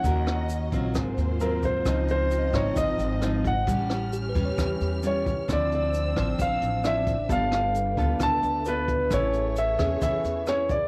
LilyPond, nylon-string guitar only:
\new Staff \with { instrumentName = "Nylon-string guitar" } { \time 4/4 \key cis \phrygian \tempo 4 = 132 << { <cis' fis' ais'>4 r8 <fis c' f'>4. <fis bis eis'>4 | <eis bis dis'>4. <eis bis dis'>4. <eis bis dis'>8 r8 | <g cis'>4. <g cis'>4. <g cis' f'>8 r8 | <f c' e'>4. <f c'>4. <f c' e'>8 r8 |
<b f' a'>4 r8 <b f' a'>4. <b f' a'>4 | <cis' e' gis'>4 r8 <cis' e' gis'>4. <cis' e' gis'>8 r8 | } \\ { dis2 gis,2 | cis2 gis,2 | a,2 e2 | d2 a,2 |
g2 d2 | a2 e2 | } >> }